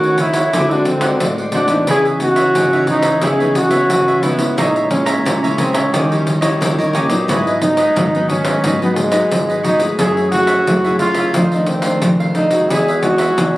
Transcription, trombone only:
0.00 0.22 F#4 loud
0.21 0.74 E4 loud
0.72 0.87 D4 medium
0.87 1.25 C4 medium
1.55 1.86 D4 medium
1.91 2.05 G#4 loud
2.22 2.85 F#4 loud
2.90 3.26 D#4 loud
3.25 3.58 G#4 loud
3.57 4.25 F#4 loud
4.23 4.58 B3 medium
4.60 4.90 D#4 medium
4.91 5.23 C#4 medium
5.27 5.62 A#3 medium
5.60 5.76 C4 medium
5.75 6.50 C#4 medium
6.93 7.25 A#3 medium
7.28 7.60 E4 medium
7.61 8.26 D#4 loud
8.29 8.77 C#4 loud
8.82 8.99 B3 medium
8.98 9.65 G#3 medium
9.66 9.81 D#4 medium
9.99 10.31 G#4 loud
10.31 10.96 F#4 loud
10.99 11.47 F4 loud
11.52 11.69 D#4 medium
11.67 12.09 C4 medium
12.35 12.72 D#4 medium
12.70 13.01 G#4 loud
13.02 13.57 F#4 loud

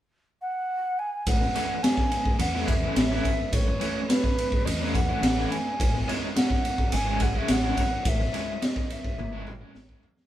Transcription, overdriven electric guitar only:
1.41 muted overdriven electric guitar stroke medium
1.56 1.74 E3 medium
1.56 1.74 A3 medium
1.56 1.74 C#4 medium
1.56 1.74 E4 medium
1.84 muted overdriven electric guitar stroke soft
1.98 muted overdriven electric guitar stroke medium
2.39 muted overdriven electric guitar stroke soft
2.54 2.73 E3 medium
2.54 2.73 A3 medium
2.54 2.73 C#4 medium
2.54 2.72 E4 loud
2.83 3.02 E3 medium
2.83 3.01 A3 medium
2.83 3.01 C#4 medium
2.83 3.01 E4 medium
3.11 3.29 E3 medium
3.11 3.29 A3 medium
3.11 3.29 C#4 medium
3.11 3.29 E4 medium
3.67 muted overdriven electric guitar stroke soft
3.80 3.99 E3 medium
3.80 3.99 A3 medium
3.80 3.99 C#4 medium
3.80 4.00 E4 loud
4.09 muted overdriven electric guitar stroke soft
4.23 muted overdriven electric guitar stroke medium
4.66 muted overdriven electric guitar stroke soft
4.79 4.99 E3 medium
4.79 4.98 A3 medium
4.79 4.98 C#4 medium
4.79 4.98 E4 medium
5.08 5.27 E3 medium
5.08 5.27 A3 medium
5.08 5.27 C#4 medium
5.08 5.27 E4 medium
5.38 5.56 E3 medium
5.38 5.56 A3 medium
5.38 5.56 C#4 medium
5.38 5.56 E4 medium
5.95 muted overdriven electric guitar stroke soft
6.08 6.26 C#3 medium
6.08 6.26 G#3 medium
6.08 6.26 C#4 medium
6.08 6.27 E4 medium
6.36 muted overdriven electric guitar stroke soft
6.50 muted overdriven electric guitar stroke medium
6.93 muted overdriven electric guitar stroke soft
7.07 7.26 C#3 medium
7.07 7.25 G#3 medium
7.07 7.25 C#4 medium
7.07 7.25 E4 loud
7.35 7.54 C#3 medium
7.35 7.54 G#3 medium
7.35 7.53 C#4 medium
7.35 7.53 E4 medium
7.63 7.82 C#3 medium
7.63 7.82 G#3 medium
7.63 7.82 C#4 medium
7.63 7.82 E4 medium
8.20 muted overdriven electric guitar stroke medium
8.33 8.52 C#3 medium
8.33 8.52 G#3 medium
8.33 8.52 C#4 medium
8.33 8.52 E4 medium
8.62 muted overdriven electric guitar stroke soft
8.76 muted overdriven electric guitar stroke medium
9.19 muted overdriven electric guitar stroke medium
9.33 9.51 C#3 medium
9.33 9.51 G#3 medium
9.33 9.51 C#4 medium
9.33 9.51 E4 medium
9.61 9.80 C#3 medium
9.61 9.80 G#3 medium
9.61 9.80 C#4 medium
9.61 9.79 E4 medium
9.89 10.08 C#3 medium
9.89 10.08 G#3 medium
9.89 10.07 C#4 medium
9.89 10.07 E4 medium

